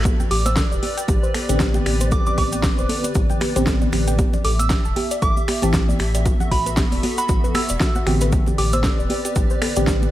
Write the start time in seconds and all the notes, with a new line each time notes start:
Already playing: A1
0.05 G4 B4 D5, kick, closed hi-hat, high conga, cabasa
0.20 G5, muted conga, low conga, cabasa
0.31 A1 G4 D6, open hi-hat
0.46 C5 E6, closed hi-hat, muted conga, high conga, cabasa
0.56 A4, kick, snare, closed hi-hat, cabasa
0.72 E1 D5, cabasa
0.83 G4, open hi-hat, muted conga, high conga
0.97 G5, closed hi-hat, cabasa
1.08 A1 G4, kick, closed hi-hat, muted conga, cabasa
1.23 C5, cabasa
1.34 A4, finger snap, open hi-hat, high conga
1.49 A1 D3 B3 C4 G4 D5, closed hi-hat, muted conga, cabasa
1.60 G4, kick, snare, closed hi-hat, cabasa
1.74 G5, muted conga, high conga, cabasa
1.86 A1 G4, finger snap, open hi-hat
2.01 C5, closed hi-hat, cabasa
2.11 A4 D6, kick, closed hi-hat, muted conga, high conga, cabasa
2.26 D5 D6, low conga, cabasa
2.38 A1 G4 D6, kick, open hi-hat, muted conga
2.52 G5, closed hi-hat, high conga, cabasa
2.63 G4, kick, snare, closed hi-hat, cabasa
2.78 E1 C5, muted conga, cabasa
2.89 A4, open hi-hat, high conga
3.04 D5, closed hi-hat, muted conga, cabasa
3.15 A1 G4, kick, closed hi-hat, cabasa
3.30 G5, low conga, cabasa
3.41 G4, finger snap, open hi-hat, muted conga, high conga
3.56 A1 D3 B3 C4 G4 C5, closed hi-hat, cabasa
3.66 A4, kick, snare, closed hi-hat, muted conga, cabasa
3.82 D5, high conga, cabasa
3.92 A1 G4, finger snap, open hi-hat, low conga
4.08 G5, closed hi-hat, muted conga, cabasa
4.18 G4 E5, kick, closed hi-hat, high conga, cabasa
4.33 D5, muted conga, low conga, cabasa
4.45 A1 A4 D6, open hi-hat
4.59 E5 E6, closed hi-hat, high conga, cabasa
4.70 G4, kick, snare, closed hi-hat, muted conga, cabasa
4.85 E1 A5, cabasa
4.96 G4, open hi-hat, muted conga, high conga
5.11 D5, closed hi-hat, cabasa
5.22 A1 A4 D6, kick, closed hi-hat, cabasa
5.37 E5, muted conga, cabasa
5.48 G4, finger snap, open hi-hat, high conga
5.62 A1 E3 C4 G4 A5, closed hi-hat, muted conga, cabasa
5.73 G4, kick, snare, closed hi-hat, cabasa
5.89 D5, high conga, cabasa
5.99 A1 B3 F#4 G4 A4, finger snap, open hi-hat, muted conga
6.15 D5, closed hi-hat, cabasa
6.25 F#4, kick, closed hi-hat, muted conga, high conga, cabasa
6.40 F#5, low conga, cabasa
6.51 A1 F#4 B5, kick, open hi-hat
6.66 B4, closed hi-hat, muted conga, high conga, cabasa
6.77 G4, kick, snare, closed hi-hat, cabasa
6.92 E1 D5, open hi-hat, muted conga, cabasa
7.03 F#4, open hi-hat, high conga
7.18 F#5 B5, closed hi-hat, cabasa
7.29 A1 F#4, kick, closed hi-hat, muted conga, cabasa
7.44 B4, low conga, cabasa
7.55 G4 E6, finger snap, open hi-hat, muted conga, high conga
7.69 E1 D5, closed hi-hat, cabasa
7.80 F#4, kick, snare, closed hi-hat, cabasa
7.95 F#5, muted conga, high conga, cabasa
8.07 A1 D3 B3 C4 F#4 G4, finger snap, open hi-hat, low conga
8.21 B4, closed hi-hat, muted conga, cabasa
8.32 G4 B4 D5, kick, closed hi-hat, high conga, cabasa
8.46 G4, muted conga, low conga, cabasa
8.58 A1 G4 D6, open hi-hat
8.73 C5 E6, closed hi-hat, muted conga, high conga, cabasa
8.84 A4, kick, snare, closed hi-hat, cabasa
8.99 E1 D5, cabasa
9.10 G4, open hi-hat, muted conga, high conga
9.25 G4, closed hi-hat, cabasa
9.35 A1 G4, kick, closed hi-hat, muted conga, cabasa
9.50 C5, cabasa
9.62 A4, finger snap, open hi-hat, high conga
9.76 A1 D3 B3 C4 G4 D5, closed hi-hat, muted conga, cabasa
9.87 G4, kick, snare, closed hi-hat, cabasa
10.02 G4, muted conga, high conga, cabasa